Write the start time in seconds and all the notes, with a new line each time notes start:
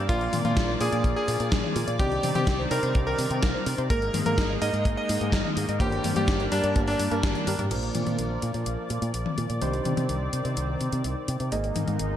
Already playing: A#3 D5
0.09 A#1 F3 A#3 D4 F4 D5, kick, closed hi-hat
0.21 A#4, closed hi-hat
0.33 A#2 A#3, open hi-hat, high tom
0.45 A#2 A#3 F4, closed hi-hat, high tom
0.57 A#1 D4, kick, snare, closed hi-hat
0.69 D5
0.80 A#2 A#3 D4 F4 G#4 D5, open hi-hat
0.92 A#2 D5, closed hi-hat
1.04 A#1 A#3, kick, closed hi-hat
1.16 G#4 A#4
1.28 A#2 A#3, open hi-hat
1.40 A#2 A#3, closed hi-hat
1.52 A#1 D4, kick, snare, closed hi-hat
1.64 D5, high tom
1.76 A#2 F4, open hi-hat
1.87 A#2 D5, closed hi-hat
1.99 C2 D#3 G3 C4 D4 D#4 G4 D5, kick, closed hi-hat, high tom
2.11 G4, closed hi-hat
2.23 C3 C4, open hi-hat, high tom
2.35 C3 C4 G4, closed hi-hat, high tom
2.47 C2 D4, kick, snare, closed hi-hat
2.59 C5
2.71 C3 G3 D4 D#4 A#4 C5, open hi-hat
2.83 C3 C5, closed hi-hat
2.95 C2 C4, kick, closed hi-hat
3.07 G4 A#4
3.18 C3 C4, open hi-hat
3.30 C3 C4, closed hi-hat
3.42 C2 D4, kick, snare, closed hi-hat
3.54 C5
3.66 C3 D#4, open hi-hat
3.78 C3 C5, closed hi-hat
3.90 G#1 G#3 A#3 D#4 A#4, kick, closed hi-hat
4.02 A#4, closed hi-hat
4.14 G#2 A#3, open hi-hat, high tom
4.26 G#2 A#3 A#4, closed hi-hat, high tom
4.38 G#1 D#4, kick, snare, closed hi-hat
4.50 D#5
4.61 G#2 G#3 A#3 D#4 G#4 A#4 D#5, open hi-hat
4.73 G#2 D#5, closed hi-hat
4.85 G#1 A#3, kick, closed hi-hat
4.97 A#4 D#5
5.09 G#2 A#3, open hi-hat
5.21 G#2 A#3, closed hi-hat
5.32 G#1 D#4, kick, snare, closed hi-hat
5.45 D#5, high tom
5.57 G#2 G#4, open hi-hat
5.68 G#2 D#5, closed hi-hat
5.80 G1 G3 A#3 D4 G4 C5, kick, closed hi-hat, high tom
5.92 A#4, closed hi-hat
6.04 G2 A#3, open hi-hat, high tom
6.16 G2 A#3 G4, closed hi-hat, high tom
6.28 G1 D4, kick, snare, closed hi-hat
6.40 D5, closed hi-hat
6.52 G2 G3 A#3 D4 G4 A#4, snare, open hi-hat
6.64 G2 D5, closed hi-hat
6.76 G1 A#3, kick, closed hi-hat
6.88 D4 A#4, open hi-hat
6.99 G2 A#3, open hi-hat
7.11 G2 G3 A#3 D4 A#4, closed hi-hat
7.23 G1 D4, kick, snare, closed hi-hat, high tom
7.35 D5, closed hi-hat, high tom
7.47 G2 G3 A#3 D4 G4 A#4, open hi-hat
7.59 G2 D5, closed hi-hat, mid tom
7.71 A#1 F3 A#3 D4 A#4 D5, closed hi-hat, crash
7.83 A#4, closed hi-hat
7.95 A#2 A#3, closed hi-hat, high tom
8.07 A#2 A#3, closed hi-hat, high tom
8.19 A#1 D4, closed hi-hat
8.30 D5
8.42 A#2 F4, closed hi-hat
8.54 A#2 D5, closed hi-hat
8.66 A#1 A#3, closed hi-hat
8.78 A#4
8.90 A#2 A#3, closed hi-hat
9.02 A#2 A#3, closed hi-hat
9.14 A#1 D4, closed hi-hat
9.26 D5, high tom
9.37 A#2 F4, closed hi-hat
9.49 A#2 D5, closed hi-hat
9.61 C2 D#3 G3 C4 D4 D#4 C5, closed hi-hat, high tom
9.73 G4, closed hi-hat
9.85 C3 C4, closed hi-hat, high tom
9.97 C3 C4, closed hi-hat, high tom
10.09 C2, closed hi-hat
10.21 C5
10.33 C3 D#4, closed hi-hat
10.45 C3 C5, closed hi-hat
10.57 C2 C4, closed hi-hat
10.69 G4
10.81 C3 C4, closed hi-hat
10.92 C3 C4, closed hi-hat
11.04 C2 D4, closed hi-hat
11.16 C5
11.28 C3 D#4, closed hi-hat
11.40 C3 C5, closed hi-hat
11.52 G#1 G#3 A#3 D#4 G#4 D#5, closed hi-hat
11.64 A#4, closed hi-hat
11.76 G#2 A#3, closed hi-hat, high tom
11.88 G#2 A#3, closed hi-hat, high tom
11.99 G#1 D#4, closed hi-hat
12.11 D#5